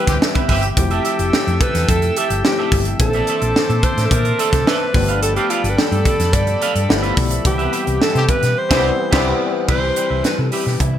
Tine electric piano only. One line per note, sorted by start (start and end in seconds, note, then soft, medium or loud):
0.00 0.78 E3 medium
0.00 0.79 G3 medium
0.00 0.79 B3 medium
0.00 0.78 C4 medium
0.00 0.79 G4 medium
0.76 2.40 F3 medium
0.76 2.41 A3 medium
0.76 2.41 C4 medium
0.76 2.41 E4 medium
0.76 0.84 F#4 medium
0.85 2.44 G4 medium
2.44 2.99 F3 soft
2.44 3.00 A3 soft
2.44 2.99 C4 soft
2.44 3.00 E4 soft
2.44 3.00 G4 medium
2.99 4.90 E3 medium
2.99 4.91 A#3 medium
2.99 4.91 C4 medium
2.99 4.91 D4 medium
2.99 4.92 A4 medium
4.93 6.85 F3 medium
4.93 6.85 A3 medium
4.93 6.86 B3 medium
4.93 6.86 D4 medium
4.93 6.86 G4 medium
6.89 7.45 F3 medium
6.89 7.45 A3 medium
6.89 7.44 B3 medium
6.89 7.45 E4 medium
6.89 7.45 G4 medium
7.44 8.54 E3 medium
7.44 8.54 G3 medium
7.44 8.55 B3 medium
7.44 8.55 C4 medium
7.44 8.55 G4 medium
8.71 8.90 E3 loud
8.71 8.90 G3 loud
8.71 8.90 B3 loud
8.71 8.90 C4 loud
9.12 9.31 E3 loud
9.12 9.32 G3 loud
9.12 9.32 B3 loud
9.12 9.32 C4 loud
9.67 10.99 E3 medium
9.67 10.99 G3 medium
9.67 10.99 C4 medium
9.67 10.99 G4 medium